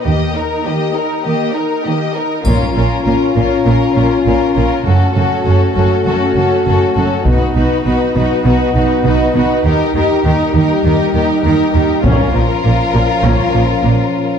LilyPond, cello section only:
\new Staff \with { instrumentName = "Cello section" } { \clef bass \time 4/4 \key ees \mixolydian \tempo 4 = 100 ees4 ees4 ees4 ees4 | bes,8 bes,8 bes,8 bes,8 bes,8 bes,8 bes,8 bes,8 | ges,8 ges,8 ges,8 ges,8 ges,8 ges,8 ges,8 ges,8 | b,8 b,8 b,8 b,8 b,8 b,8 b,8 b,8 |
ees8 ees8 ees8 ees8 ees8 ees8 ees8 ees8 | bes,8 bes,8 bes,8 bes,8 bes,8 bes,8 bes,8 r8 | }